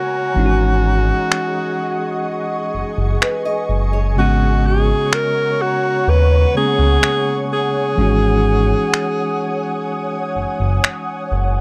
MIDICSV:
0, 0, Header, 1, 7, 480
1, 0, Start_track
1, 0, Tempo, 952381
1, 181, Time_signature, 4, 2, 24, 8
1, 5849, End_track
2, 0, Start_track
2, 0, Title_t, "Ambient pad"
2, 0, Program_c, 0, 92
2, 0, Note_on_c, 0, 73, 70
2, 0, Note_on_c, 0, 80, 64
2, 0, Note_on_c, 0, 82, 73
2, 162, Note_off_c, 0, 73, 0
2, 162, Note_off_c, 0, 82, 0
2, 171, Note_off_c, 0, 80, 0
2, 182, Note_on_c, 0, 68, 75
2, 182, Note_on_c, 0, 75, 70
2, 182, Note_on_c, 0, 78, 68
2, 183, Note_on_c, 0, 85, 82
2, 1132, Note_off_c, 0, 78, 0
2, 1142, Note_on_c, 0, 80, 68
2, 2082, Note_off_c, 0, 68, 0
2, 2082, Note_off_c, 0, 75, 0
2, 2092, Note_off_c, 0, 80, 0
2, 2102, Note_on_c, 0, 73, 78
2, 2102, Note_on_c, 0, 78, 69
2, 2102, Note_on_c, 0, 82, 66
2, 3052, Note_off_c, 0, 82, 0
2, 3061, Note_on_c, 0, 80, 68
2, 4002, Note_off_c, 0, 73, 0
2, 4002, Note_off_c, 0, 85, 0
2, 4011, Note_off_c, 0, 80, 0
2, 4020, Note_on_c, 0, 73, 74
2, 4020, Note_on_c, 0, 80, 64
2, 4020, Note_on_c, 0, 87, 82
2, 5849, Note_off_c, 0, 73, 0
2, 5849, Note_off_c, 0, 78, 0
2, 5849, Note_off_c, 0, 80, 0
2, 5849, Note_off_c, 0, 87, 0
2, 5849, End_track
3, 0, Start_track
3, 0, Title_t, "Nylon-string guitar"
3, 0, Program_c, 1, 24
3, 1621, Note_on_c, 1, 71, 79
3, 1735, Note_off_c, 1, 71, 0
3, 1741, Note_on_c, 1, 75, 83
3, 1969, Note_off_c, 1, 75, 0
3, 1981, Note_on_c, 1, 73, 72
3, 2209, Note_off_c, 1, 73, 0
3, 5849, End_track
4, 0, Start_track
4, 0, Title_t, "Alto saxophone"
4, 0, Program_c, 2, 65
4, 0, Note_on_c, 2, 66, 81
4, 1386, Note_off_c, 2, 66, 0
4, 2111, Note_on_c, 2, 66, 91
4, 2351, Note_on_c, 2, 68, 88
4, 2359, Note_off_c, 2, 66, 0
4, 2591, Note_on_c, 2, 70, 102
4, 2599, Note_off_c, 2, 68, 0
4, 2831, Note_on_c, 2, 66, 91
4, 2839, Note_off_c, 2, 70, 0
4, 3072, Note_on_c, 2, 71, 103
4, 3079, Note_off_c, 2, 66, 0
4, 3306, Note_off_c, 2, 71, 0
4, 3312, Note_on_c, 2, 68, 107
4, 3766, Note_off_c, 2, 68, 0
4, 3793, Note_on_c, 2, 68, 88
4, 5207, Note_off_c, 2, 68, 0
4, 5849, End_track
5, 0, Start_track
5, 0, Title_t, "Tine electric piano"
5, 0, Program_c, 3, 4
5, 0, Control_c, 3, 64, 127
5, 0, Note_on_c, 3, 49, 60
5, 0, Note_on_c, 3, 56, 56
5, 0, Note_on_c, 3, 58, 52
5, 0, Note_on_c, 3, 59, 58
5, 156, Note_off_c, 3, 49, 0
5, 160, Note_off_c, 3, 56, 0
5, 163, Note_off_c, 3, 58, 0
5, 166, Note_off_c, 3, 59, 0
5, 172, Note_on_c, 3, 52, 57
5, 179, Note_on_c, 3, 56, 56
5, 186, Note_on_c, 3, 61, 59
5, 187, Control_c, 3, 64, 0
5, 192, Note_on_c, 3, 63, 56
5, 199, Note_on_c, 3, 64, 54
5, 223, Note_off_c, 3, 64, 0
5, 232, Note_on_c, 3, 66, 70
5, 266, Control_c, 3, 64, 127
5, 2076, Note_off_c, 3, 52, 0
5, 2080, Note_off_c, 3, 56, 0
5, 2083, Note_off_c, 3, 61, 0
5, 2087, Note_off_c, 3, 63, 0
5, 2093, Note_on_c, 3, 49, 62
5, 2100, Note_on_c, 3, 56, 53
5, 2106, Note_off_c, 3, 66, 0
5, 2106, Note_on_c, 3, 61, 53
5, 2107, Control_c, 3, 64, 0
5, 2113, Note_on_c, 3, 59, 57
5, 2120, Note_on_c, 3, 66, 72
5, 2202, Control_c, 3, 64, 127
5, 3277, Note_off_c, 3, 49, 0
5, 3280, Note_off_c, 3, 56, 0
5, 3283, Note_off_c, 3, 61, 0
5, 3287, Note_off_c, 3, 59, 0
5, 3290, Note_off_c, 3, 66, 0
5, 3298, Note_on_c, 3, 49, 45
5, 3302, Note_on_c, 3, 56, 43
5, 3305, Note_on_c, 3, 58, 43
5, 3309, Note_on_c, 3, 59, 42
5, 3312, Note_on_c, 3, 61, 52
5, 4012, Note_on_c, 3, 52, 61
5, 4013, Note_off_c, 3, 56, 0
5, 4019, Note_off_c, 3, 61, 0
5, 4019, Note_on_c, 3, 56, 59
5, 4020, Note_off_c, 3, 49, 0
5, 4023, Note_off_c, 3, 58, 0
5, 4025, Note_off_c, 3, 59, 0
5, 4025, Note_on_c, 3, 61, 59
5, 4027, Control_c, 3, 64, 0
5, 4032, Note_on_c, 3, 63, 55
5, 4038, Note_on_c, 3, 66, 67
5, 4115, Control_c, 3, 64, 127
5, 5849, Note_off_c, 3, 52, 0
5, 5849, Note_off_c, 3, 56, 0
5, 5849, Note_off_c, 3, 61, 0
5, 5849, Note_off_c, 3, 63, 0
5, 5849, Note_off_c, 3, 66, 0
5, 5849, End_track
6, 0, Start_track
6, 0, Title_t, "Analog synth bass"
6, 0, Program_c, 4, 38
6, 182, Note_on_c, 4, 32, 114
6, 565, Note_off_c, 4, 32, 0
6, 1382, Note_on_c, 4, 30, 47
6, 1430, Note_off_c, 4, 30, 0
6, 1502, Note_on_c, 4, 30, 86
6, 1597, Note_off_c, 4, 30, 0
6, 1861, Note_on_c, 4, 30, 89
6, 2101, Note_on_c, 4, 32, 112
6, 2109, Note_off_c, 4, 30, 0
6, 2484, Note_off_c, 4, 32, 0
6, 3062, Note_on_c, 4, 39, 100
6, 3253, Note_off_c, 4, 39, 0
6, 3422, Note_on_c, 4, 37, 88
6, 3517, Note_off_c, 4, 37, 0
6, 4022, Note_on_c, 4, 32, 110
6, 4405, Note_off_c, 4, 32, 0
6, 5222, Note_on_c, 4, 30, 47
6, 5269, Note_off_c, 4, 30, 0
6, 5342, Note_on_c, 4, 30, 80
6, 5437, Note_off_c, 4, 30, 0
6, 5703, Note_on_c, 4, 30, 87
6, 5849, Note_off_c, 4, 30, 0
6, 5849, End_track
7, 0, Start_track
7, 0, Title_t, "Drums"
7, 663, Note_on_c, 9, 26, 108
7, 714, Note_off_c, 9, 26, 0
7, 1623, Note_on_c, 9, 26, 91
7, 1673, Note_off_c, 9, 26, 0
7, 2584, Note_on_c, 9, 26, 114
7, 2634, Note_off_c, 9, 26, 0
7, 3543, Note_on_c, 9, 26, 94
7, 3594, Note_off_c, 9, 26, 0
7, 4504, Note_on_c, 9, 26, 111
7, 4554, Note_off_c, 9, 26, 0
7, 5463, Note_on_c, 9, 26, 91
7, 5513, Note_off_c, 9, 26, 0
7, 5849, End_track
0, 0, End_of_file